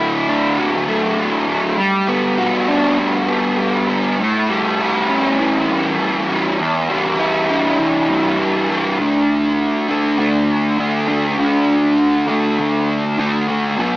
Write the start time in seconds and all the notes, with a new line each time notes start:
Already playing: D3 A3 E4
0.28 D4
0.59 F#3
0.89 A3
1.18 F#3
1.47 A3
1.77 G3
2.08 B3
2.38 F#4
2.68 D4
2.98 G3
3.28 B3
3.58 G3
3.88 B3
4.19 A2
4.49 G3
4.80 E4
5.09 C#4
5.39 E3
5.69 G3
6.00 E3
6.29 G3
6.60 E2
6.89 G3
7.19 E4
7.50 D4
7.79 E3
8.09 G3
8.38 E3
8.69 G3
8.99 D3 A3 D4
9.88 A3 D4
10.18 D3 A3 D4
10.78 D3 A3 D4
11.08 A3 D4
11.38 D3 A3 D4
12.27 A3 D4
12.58 D3 A3 D4
13.18 D3 A3 D4
13.48 A3 D4
13.78 B2 F#3 B3